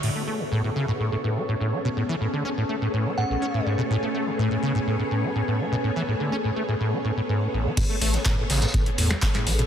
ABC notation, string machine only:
X:1
M:4/4
L:1/8
Q:1/4=124
K:A
V:1 name="String machine"
[B,GAc]8- | [B,GAc]8- | [B,GAc]8- | [B,GAc]8 |
[B,GAc]8 |]